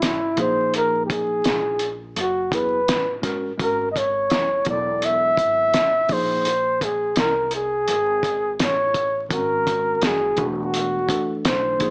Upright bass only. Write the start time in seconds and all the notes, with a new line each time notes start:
0.02 G#1
0.38 A#1
1.45 A#1
2.17 F#1
2.88 A1
3.60 G#1
4.31 F#1
4.67 E1
5.37 G#1
5.74 A1
6.10 A#1
7.16 C2
7.88 G#1
8.59 A1
9.31 G#1
10.02 F#1
10.38 E1
11.45 B1
11.81 A#1